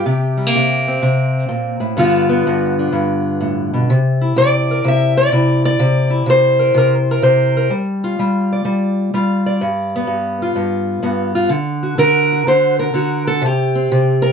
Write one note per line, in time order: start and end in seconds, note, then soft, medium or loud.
0.00 1.03 G4 medium
0.06 0.53 C3 medium
0.37 0.47 G3 soft
0.47 1.97 A#3 soft
0.56 1.01 C3 medium
0.88 1.96 C4 soft
1.02 1.48 C3 medium
1.49 1.80 A#2 medium
1.80 1.96 A2 medium
1.97 2.45 G2 medium
1.97 3.88 D3 medium
1.97 2.28 B3 medium
1.97 2.78 D4 medium
1.97 3.87 F4 medium
2.29 3.86 B3 medium
2.47 2.91 G2 medium
2.79 3.87 D4 soft
2.92 3.86 G2 medium
3.41 3.73 A2 medium
3.73 3.89 B2 medium
3.90 4.36 C3 medium
4.21 5.32 E4 soft
4.36 4.84 C3 medium
4.36 4.85 D5 loud
4.71 5.79 A#4 soft
4.85 5.31 C3 medium
4.85 5.17 E5 medium
5.17 5.64 D5 medium
5.32 5.78 C3 medium
5.32 5.78 E4 soft
5.65 6.28 D5 loud
5.79 6.25 C3 medium
6.10 7.68 E4 soft
6.26 6.73 C3 medium
6.26 7.22 C5 medium
6.59 6.75 A#4 soft
6.74 7.21 C3 medium
6.74 6.94 A#4 medium
7.11 7.56 A#4 medium
7.22 7.68 C3 medium
7.22 7.71 C5 medium
7.57 7.69 A#4 medium
7.70 8.19 G3 medium
8.04 9.14 F4 soft
8.19 8.64 G3 medium
8.53 9.46 D5 soft
8.65 9.13 G3 medium
9.14 9.59 G3 medium
9.14 9.60 F4 medium
9.46 11.99 D5 medium
9.61 10.06 G2 medium
9.96 11.02 B3 medium
10.07 10.54 G2 medium
10.42 11.34 F4 medium
10.56 11.01 G2 medium
11.03 11.49 G2 medium
11.03 11.49 B3 medium
11.35 11.49 F4 medium
11.49 11.97 D3 medium
11.83 12.31 F#4 soft
11.98 12.46 D3 medium
11.98 12.47 A#4 loud
12.32 12.94 F#4 soft
12.47 12.93 D3 medium
12.47 12.79 C5 medium
12.79 13.27 A#4 medium
12.94 13.42 D3 medium
12.94 13.41 F#4 soft
13.27 13.43 A4 medium
13.41 13.90 C3 medium
13.46 14.32 G4 loud
13.75 14.32 C4 soft
13.92 14.32 C3 medium
14.22 14.32 A#4 loud